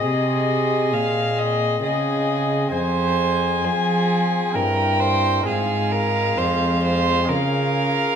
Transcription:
<<
  \new Staff \with { instrumentName = "Violin" } { \time 3/4 \key aes \major \tempo 4 = 66 ees''4 f''8 ees''8 ees''4 | \key f \minor aes''2 g''4 | f''2 f''4 | }
  \new Staff \with { instrumentName = "Violin" } { \time 3/4 \key aes \major aes'2 aes'4 | \key f \minor c''4 aes'4 bes'8 c''8 | aes'8 bes'8 c''8 c''8 bes'4 | }
  \new Staff \with { instrumentName = "Pipe organ" } { \time 3/4 \key aes \major <c' aes' ees''>2. | \key f \minor <c' aes' c''>2 <c' e' bes'>4 | <aes c' f' aes'>2 <des' f' aes'>4 | }
  \new Staff \with { instrumentName = "Pipe organ" } { \clef bass \time 3/4 \key aes \major c4 bes,4 des4 | \key f \minor f,4 f4 g,4 | aes,4 f,4 des4 | }
  \new Staff \with { instrumentName = "Cello" } { \clef bass \time 3/4 \key aes \major c4 bes,4 des4 | \key f \minor f,4 f4 g,4 | aes,4 f,4 des4 | }
>>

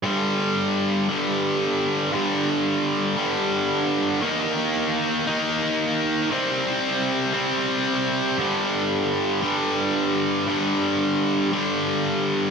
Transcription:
\new Staff \with { instrumentName = "Distorted electric guitar" } { \clef bass \time 6/8 \key g \minor \tempo 4. = 58 <g, d g>4. <g, d g>4. | <g, d g>4. <g, d g>4. | <ees bes ees'>4. <ees bes ees'>4. | <c g c'>4. <c g c'>4. |
<g, d g>4. <g, d g>4. | <g, d g>4. <g, d g>4. | }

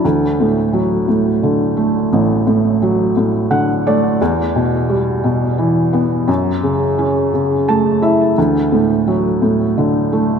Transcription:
\new Staff \with { instrumentName = "Felt piano" } { \clef bass \time 6/8 \key d \major \tempo 4. = 58 d,8 a,8 fis8 a,8 d8 a8 | a,,8 a,8 fis8 a,8 <d fis''>8 <a d''>8 | e,8 b,8 g8 b,8 e8 b8 | fis,8 cis8 cis'8 cis8 <a a''>8 <e' e''>8 |
d,8 a,8 fis8 a,8 d8 a8 | }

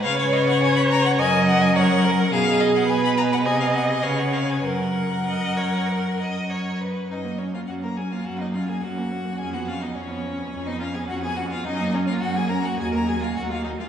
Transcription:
<<
  \new Staff \with { instrumentName = "Violin" } { \time 4/4 \key fis \major \tempo 4 = 105 eis''16 cis''16 dis''16 fis''16 gis''16 b''16 ais''16 fis''16 gis''8 fis''16 gis''16 fis''4 | eis''8 dis''16 fis''16 gis''16 b''16 ais''16 fis''16 gis''16 eis''16 fis''16 dis''16 eis''16 fis''16 eis''16 gis''16 | fis''2.~ fis''8 r8 | dis''8 cis''16 eis''16 fis''16 ais''16 gis''16 eis''16 fis''16 dis''16 eis''16 gis''16 fis''4 |
gis''16 fis''16 eis''16 dis''16 cis''4~ cis''16 dis''16 eis''16 gis''16 fis''16 gis''16 fis''16 eis''16 | dis''8 cis''16 eis''16 fis''16 gis''16 ais''16 fis''16 gis''16 ais''16 gis''16 eis''16 fis''16 eis''16 dis''16 eis''16 | }
  \new Staff \with { instrumentName = "Violin" } { \time 4/4 \key fis \major b'4 b'4 ais'4 ais'4 | gis'4 gis'4 gis'4 b'4 | ais'4 dis''8 cis''8 ais'8 dis''8 cis''8 b'8 | dis'8 cis'16 eis'16 fis'16 ais'16 gis'16 eis'16 fis'16 dis'16 eis'16 gis'16 fis'4 |
gis'16 fis'16 eis'16 dis'16 cis'4~ cis'16 dis'16 eis'16 gis'16 fis'16 gis'16 fis'16 eis'16 | dis'8 cis'16 eis'16 fis'16 gis'16 ais'16 fis'16 gis'16 ais'16 gis'16 eis'16 fis'16 eis'16 dis'16 eis'16 | }
  \new Staff \with { instrumentName = "Viola" } { \time 4/4 \key fis \major cis''2 dis''4 cis''8 ais'8 | gis'4 b'4 dis''4 cis''4 | ais'2.~ ais'8 r8 | cis'16 ais16 cis'16 ais16 cis'16 ais16 cis'16 ais16 cis'16 ais16 cis'16 ais16 cis'16 ais16 cis'16 ais16 |
cis'16 b16 cis'16 b16 cis'16 b16 cis'16 b16 cis'16 b16 cis'16 b16 cis'16 b16 cis'16 b16 | cis'16 ais16 cis'16 ais16 cis'16 ais16 cis'16 ais16 fis16 ais16 fis16 ais16 fis16 ais16 fis16 ais16 | }
  \new Staff \with { instrumentName = "Cello" } { \clef bass \time 4/4 \key fis \major cis2 fis,2 | b,2 bis,4 cis4 | fis,2.~ fis,8 r8 | fis,4 fis,4 fis,4 fis,4 |
eis,4 eis,4 eis,4 eis,4 | fis,4 fis,4 dis,4 dis,4 | }
>>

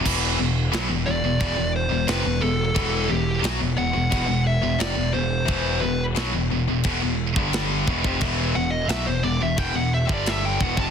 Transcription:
<<
  \new Staff \with { instrumentName = "Lead electric guitar" } { \time 4/4 \key e \minor \tempo 4 = 88 r4. d''4 c''8 b'8 a'8~ | a'8 g'8 r8 fis''4 e''8 d''8 c''8~ | c''8 b'8 r2. | r8 fis''16 dis''16 e''16 c''16 d''16 e''16 g''16 fis''16 e''16 d''16 e''16 g''16 fis''16 a''16 | }
  \new Staff \with { instrumentName = "Distorted electric guitar" } { \clef bass \time 4/4 \key e \minor <e, b, e>8 <e, b,>8 <b, fis>16 <e, b,>16 <e, b,>16 <e, b,>16 <e, b,>16 <e, b,>8 <e, b,>16 <f, c>16 <e, b,>16 <e, b,>8 | <e, b, e>8 <e, b,>8 <b, fis>16 <e, b,>16 <e, b,>16 <e, b,>16 <e, b,>16 <e, b,>8 <e, b,>16 <f, c>16 <e, b,>16 <e, b,>8 | <e, b, e>8 <e, b,>8 <b, fis>16 <e, b,>16 <e, b,>16 <e, b,>16 <e, b,>16 <e, b,>8 <g, d g>8. <e, b,>16 <f, c>16 | <e, b, e>8 <e, b,>8 <b, fis>16 <e, b,>16 <e, b,>16 <e, b,>16 <e, b,>16 <e, b,>8 <g, d g>8. <e, b,>16 <f, c>16 | }
  \new Staff \with { instrumentName = "Distorted electric guitar" } { \clef bass \time 4/4 \key e \minor <e, b, e>8 <e, b,>8 <b, fis>16 <e, b,>16 <e, b,>16 <e, b,>16 <e, b,>16 <e, b,>8 <e, b,>16 <f, c>16 <e, b,>16 <e, b,>8 | <e, b, e>8 <e, b,>8 <b, fis>16 <e, b,>16 <e, b,>16 <e, b,>16 <e, b,>16 <e, b,>8 <e, b,>16 <f, c>16 <e, b,>16 <e, b,>8 | <e, b, e>8 <e, b,>8 <b, fis>16 <e, b,>16 <e, b,>16 <e, b,>16 <e, b,>16 <e, b,>8 <g, d g>8. <e, b,>16 <f, c>16 | <e, b, e>8 <e, b,>8 <b, fis>16 <e, b,>16 <e, b,>16 <e, b,>16 <e, b,>16 <e, b,>8 <g, d g>8. <e, b,>16 <f, c>16 | }
  \new Staff \with { instrumentName = "Picked electric bass" } { \clef bass \time 4/4 \key e \minor e,,8 e,,8 b,,16 e,,16 e,,16 e,,16 r16 e,,8 e,,16 f,,16 e,,16 e,,8 | e,,8 e,,8 b,,16 e,,16 e,,16 e,,16 e,,16 e,,8 e,,16 f,,16 e,,16 e,,8 | e,,8 e,,8 r16 e,,16 e,,16 e,,16 e,,16 e,,8 g,,8. e,,16 f,,16 | e,,8 e,,8 b,,16 e,,16 e,,16 e,,16 e,,16 e,,8 g,,8. e,,16 f,,16 | }
  \new DrumStaff \with { instrumentName = "Drums" } \drummode { \time 4/4 <cymc bd>4 <cymc sn>4 <cymc bd>4 <cymc sn>4 | <cymc bd>4 <cymc sn>4 <cymc bd>4 <cymc sn>4 | <cymc bd>4 <cymc sn>4 <cymc bd>8. bd16 <cymc sn>8 bd16 bd16 | <cymc bd>4 <cymc sn>4 <cymc bd>8. bd16 <cymc sn>8 bd16 bd16 | }
>>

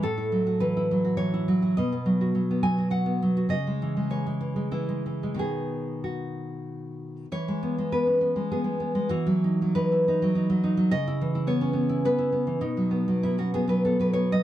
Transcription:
\new Staff \with { instrumentName = "Nylon-string guitar" } { \time 3/4 \key b \mixolydian \tempo 4 = 101 << { a'4 b'4 cis''4 | dis''4. gis''8 fis''4 | dis''4 cis''4 e'4 | gis'4 fis'4. r8 |
cis''4 b'4 gis'4 | fis'4 b'4. r8 | dis''4 cis''4 b'4 | dis'4 e'16 fis'16 gis'16 b'16 a'16 b'16 cis''16 dis''16 | } \\ { a,16 e'16 fis16 fis'16 e16 e'16 fis16 fis'16 e16 e'16 fis16 fis'16 | b,16 b16 fis16 fis'16 fis16 b16 fis16 fis'16 fis16 b16 fis16 fis'16 | cis16 gis16 e16 gis16 e16 gis16 e16 gis16 e16 gis16 e16 gis16 | <b, dis b>2. |
e16 gis16 b16 gis16 b16 cis'16 b16 gis16 b16 gis16 b16 gis16 | e16 fis16 dis'16 fis16 dis'16 e'16 dis'16 fis16 dis'16 fis16 dis'16 fis16 | cis16 e'16 e16 e'16 b16 cis'16 b16 e'16 b16 e'16 b16 e16 | b,16 fis16 b16 fis16 b16 cis'16 b16 fis16 b16 fis16 b16 fis16 | } >> }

